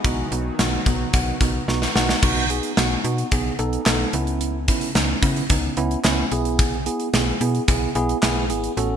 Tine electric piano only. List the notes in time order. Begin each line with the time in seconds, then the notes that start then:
0.04 B3 D#4 F#4
0.32 B3 D#4 F#4
0.59 B3 D#4 F#4
0.87 B3 D#4 F#4
1.14 B3 D#4 F#4
1.41 B3 D#4 F#4
1.68 B3 D#4 F#4
1.95 B3 D#4 F#4
2.23 B3 D#4 F#4
2.50 B3 D#4 G#4
2.77 B3 D#4 F#4
3.04 B3 D#4 F#4
3.32 B3 D#4 G#4
3.59 B3 D#4 A4
3.86 B3 D#4 A4
4.14 B3 C#4 E4
4.68 B3 C#4 E4
4.95 B3 C#4 D#4
5.23 B3 C#4 E4
5.50 B3 C#4 D#4
5.77 B3 C#4 E4
6.04 B3 C#4 E4
6.32 B3 E4 G#4
6.86 B3 E4 G#4
7.13 B3 E4 G#4
7.41 B3 E4 G#4
7.68 B3 E4 G#4
7.95 B3 E4 G#4
8.23 B3 E4 G#4
8.50 B3 E4 G#4
8.77 C#4 F#4 A4